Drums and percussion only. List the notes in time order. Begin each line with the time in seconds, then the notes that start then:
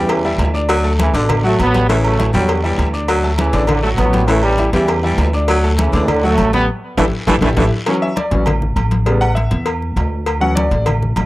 0.09 cowbell, high conga, low agogo, long guiro
0.24 high conga
0.39 cowbell, high conga, low timbale, low agogo, short guiro
0.55 short guiro
0.69 cowbell, high conga, low agogo, long guiro
0.84 high conga
0.99 cowbell, high conga, low agogo, short guiro
1.15 cowbell, short guiro
1.29 cowbell, high conga, low conga, low agogo, long guiro
1.45 high conga
1.59 cowbell, high conga, low agogo, short guiro
1.74 cowbell, high conga, short guiro
1.90 cowbell, high conga, low agogo, long guiro
2.04 high conga, low agogo
2.20 cowbell, high conga, short guiro
2.34 cowbell, short guiro
2.49 cowbell, high conga, low agogo, long guiro
2.64 high conga
2.79 cowbell, high conga, low agogo, short guiro
2.94 short guiro
3.08 cowbell, high conga, low agogo, long guiro
3.23 high conga
3.38 cowbell, high conga, low agogo, short guiro
3.53 cowbell, high conga, short guiro
3.67 cowbell, high conga, low conga, low agogo, long guiro
3.84 high conga
3.98 cowbell, high conga, low timbale, low agogo, short guiro
4.13 cowbell, high conga, short guiro
4.28 cowbell, high conga, low agogo, long guiro
4.43 high conga, low agogo
4.58 cowbell, high conga, short guiro
4.73 cowbell, short guiro
4.88 cowbell, high conga, low agogo, long guiro
5.03 high conga
5.18 cowbell, high conga, low timbale, low agogo, short guiro
5.33 short guiro
5.48 cowbell, high conga, low agogo, long guiro
5.64 high conga
5.78 cowbell, high conga, low agogo, short guiro
5.93 cowbell, high conga, short guiro
6.08 cowbell, high conga, low conga, low agogo, long guiro
6.23 high conga
6.38 cowbell, high conga, low agogo, short guiro
6.53 cowbell, high conga, short guiro
6.97 cowbell, high conga, high timbale, long guiro
7.27 cowbell, high conga, high timbale, long guiro
7.42 cowbell, high conga, high timbale, long guiro
7.57 cowbell, high conga, high timbale, long guiro
7.86 cowbell, high conga, low agogo
8.02 high conga
8.16 cowbell, high conga, low agogo
8.31 cowbell
8.46 cowbell, high conga, low conga, low agogo
8.62 high conga, low conga
8.76 cowbell, high conga, low agogo
8.91 cowbell, high conga
9.06 cowbell, high conga, low agogo
9.22 high conga, low agogo
9.36 cowbell, high conga
9.51 cowbell
9.66 cowbell, high conga, low agogo
9.82 high conga
9.97 cowbell, high conga, low timbale, low agogo
10.26 cowbell, high conga, low agogo
10.42 high conga
10.57 cowbell, high conga, low agogo
10.71 cowbell, high conga
10.86 cowbell, high conga, low conga, low agogo
11.02 high conga, low conga
11.16 cowbell, high conga, low timbale, low agogo